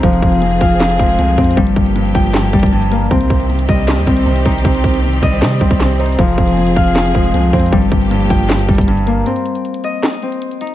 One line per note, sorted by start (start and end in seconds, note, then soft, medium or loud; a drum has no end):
0.00 0.22 F1 loud
0.00 0.40 F2 medium
0.00 3.08 F3 medium
0.00 0.98 F3 loud
0.00 1.38 C4 medium
0.00 1.55 C4 medium
0.00 2.54 D#4 medium
0.00 1.56 G#4 medium
0.00 0.86 D#5 loud
0.00 kick loud
0.00 closed hi-hat medium
0.13 closed hi-hat medium
0.22 0.59 F1 loud
0.22 kick loud
0.22 closed hi-hat medium
0.32 closed hi-hat medium
0.42 0.79 F2 medium
0.42 closed hi-hat medium
0.51 closed hi-hat medium
0.61 0.98 F1 loud
0.61 1.57 F3 loud
0.61 2.28 F5 loud
0.61 kick medium
0.61 closed hi-hat medium
0.80 1.17 F2 medium
0.80 snare loud
0.80 clap medium
0.80 closed hi-hat medium
0.90 closed hi-hat medium
0.99 1.18 F1 loud
0.99 1.62 F3 medium
0.99 1.57 G#3 medium
0.99 kick loud
0.99 closed hi-hat medium
1.09 closed hi-hat medium
1.19 1.37 C2 loud
1.19 1.57 F2 medium
1.19 closed hi-hat medium
1.28 closed hi-hat medium
1.38 1.56 F2 loud
1.38 3.10 C4 medium
1.38 1.57 C4 medium
1.38 kick medium
1.38 closed hi-hat medium
1.44 closed hi-hat medium
1.51 closed hi-hat soft
1.57 1.76 G1 loud
1.57 1.94 G2 medium
1.57 2.52 G3 loud
1.57 3.09 A#3 medium
1.57 3.09 G4 medium
1.57 kick loud
1.57 closed hi-hat medium
1.67 closed hi-hat medium
1.76 2.13 G1 loud
1.76 kick loud
1.76 closed hi-hat medium
1.86 closed hi-hat medium
1.95 2.33 G2 medium
1.95 closed hi-hat medium
2.05 closed hi-hat medium
2.14 2.52 G1 loud
2.14 3.10 F3 loud
2.14 3.70 G5 loud
2.14 kick loud
2.14 open hi-hat medium
2.34 2.71 G2 medium
2.34 snare loud
2.34 clap loud
2.34 closed hi-hat medium
2.44 closed hi-hat medium
2.53 3.09 G1 loud
2.53 3.11 G3 medium
2.53 3.16 G3 medium
2.53 kick medium
2.53 closed hi-hat medium
2.60 kick loud
2.60 closed hi-hat medium
2.66 closed hi-hat medium
2.72 3.11 G2 medium
2.72 closed hi-hat medium
2.82 closed hi-hat medium
2.91 3.11 A#3 medium
2.91 6.13 A#3 medium
2.91 closed hi-hat medium
3.10 3.29 C2 loud
3.10 3.48 C3 loud
3.10 6.16 D#3 medium
3.10 4.07 C4 medium
3.10 7.68 C4 medium
3.10 6.16 G4 medium
3.10 kick loud
3.10 closed hi-hat medium
3.21 closed hi-hat medium
3.30 3.67 C2 loud
3.30 kick loud
3.30 closed hi-hat medium
3.40 closed hi-hat medium
3.49 3.86 C3 medium
3.49 closed hi-hat medium
3.59 closed hi-hat medium
3.68 3.99 C2 loud
3.68 4.65 G3 medium
3.68 5.22 D#5 loud
3.68 kick loud
3.68 closed hi-hat medium
3.87 4.24 C3 medium
3.87 snare loud
3.87 clap loud
3.87 closed hi-hat medium
3.97 4.07 D#2 loud
3.97 closed hi-hat medium
4.07 4.26 C2 loud
4.07 5.03 C4 medium
4.07 4.64 C4 medium
4.07 kick medium
4.07 closed hi-hat medium
4.17 closed hi-hat medium
4.26 4.45 C2 loud
4.26 4.64 C3 medium
4.26 closed hi-hat medium
4.36 closed hi-hat medium
4.46 4.64 C2 loud
4.46 5.99 D#4 medium
4.46 5.42 C5 medium
4.46 kick medium
4.46 closed hi-hat medium
4.52 closed hi-hat medium
4.58 closed hi-hat soft
4.65 4.83 C2 loud
4.65 5.02 C3 medium
4.65 5.61 C4 medium
4.65 kick loud
4.65 closed hi-hat medium
4.75 closed hi-hat medium
4.84 5.21 C2 loud
4.84 kick loud
4.84 closed hi-hat medium
4.94 closed hi-hat medium
5.03 5.40 C3 medium
5.03 closed hi-hat medium
5.13 closed hi-hat medium
5.22 5.43 C2 loud
5.22 6.18 G3 loud
5.22 7.01 D#5 loud
5.22 kick medium
5.22 open hi-hat medium
5.41 5.78 C3 medium
5.41 5.60 C3 loud
5.41 snare loud
5.41 clap loud
5.41 closed hi-hat medium
5.52 closed hi-hat medium
5.61 6.16 C2 loud
5.61 6.19 C4 medium
5.61 7.53 C4 medium
5.61 kick medium
5.61 closed hi-hat medium
5.71 kick loud
5.71 closed hi-hat medium
5.80 6.19 C3 medium
5.80 snare loud
5.80 clap medium
5.80 closed hi-hat medium
5.90 closed hi-hat medium
5.99 8.70 D#4 medium
5.99 6.19 C5 medium
5.99 closed hi-hat medium
6.06 closed hi-hat medium
6.12 closed hi-hat soft
6.18 6.37 F1 loud
6.18 6.56 F2 medium
6.18 7.14 F3 loud
6.18 7.71 F3 medium
6.18 7.71 G#4 medium
6.18 kick loud
6.18 closed hi-hat medium
6.28 closed hi-hat medium
6.38 6.75 F1 loud
6.38 kick loud
6.38 closed hi-hat medium
6.48 closed hi-hat medium
6.57 6.95 F2 medium
6.57 closed hi-hat medium
6.67 closed hi-hat medium
6.76 7.13 F1 loud
6.76 7.73 F3 loud
6.76 8.43 F5 loud
6.76 kick medium
6.76 closed hi-hat medium
6.95 7.32 F2 medium
6.95 snare loud
6.95 clap loud
6.95 closed hi-hat medium
7.05 closed hi-hat medium
7.14 7.33 F1 loud
7.14 7.77 F3 medium
7.14 7.72 G#3 medium
7.14 kick medium
7.14 closed hi-hat medium
7.24 closed hi-hat medium
7.34 7.52 C2 loud
7.34 7.72 F2 medium
7.34 closed hi-hat medium
7.44 closed hi-hat medium
7.53 7.72 F2 loud
7.53 9.26 C4 medium
7.53 7.73 C4 medium
7.53 kick medium
7.53 closed hi-hat medium
7.60 closed hi-hat medium
7.66 closed hi-hat soft
7.72 7.91 G1 loud
7.72 8.09 G2 medium
7.72 9.25 F3 medium
7.72 8.68 G3 loud
7.72 9.25 A#3 medium
7.72 9.25 G4 medium
7.72 kick loud
7.72 closed hi-hat medium
7.82 closed hi-hat medium
7.92 8.29 G1 loud
7.92 kick loud
7.92 closed hi-hat medium
8.01 closed hi-hat medium
8.11 8.48 G2 medium
8.11 closed hi-hat medium
8.20 closed hi-hat medium
8.29 8.67 G1 loud
8.29 9.26 F3 medium
8.29 9.86 G5 loud
8.29 kick medium
8.29 open hi-hat medium
8.49 8.86 G2 medium
8.49 snare loud
8.49 clap loud
8.49 closed hi-hat medium
8.59 closed hi-hat medium
8.68 9.24 G1 loud
8.68 9.26 G3 medium
8.68 9.31 G3 medium
8.68 kick medium
8.68 closed hi-hat medium
8.75 kick loud
8.75 closed hi-hat medium
8.81 closed hi-hat medium
8.88 9.26 G2 loud
8.88 closed hi-hat medium
8.97 closed hi-hat medium
9.07 9.26 A#3 medium
9.07 10.75 A#3 medium
9.07 closed hi-hat medium
9.26 10.22 C4 medium
9.26 closed hi-hat medium
9.36 closed hi-hat medium
9.46 closed hi-hat medium
9.55 closed hi-hat medium
9.65 closed hi-hat medium
9.74 closed hi-hat medium
9.84 10.75 D#5 medium
9.84 closed hi-hat medium
10.03 snare loud
10.03 clap medium
10.03 closed hi-hat medium
10.13 closed hi-hat medium
10.22 10.75 C4 medium
10.22 closed hi-hat medium
10.32 closed hi-hat medium
10.42 closed hi-hat medium
10.51 closed hi-hat medium
10.61 10.75 D#4 medium
10.61 closed hi-hat medium
10.67 closed hi-hat medium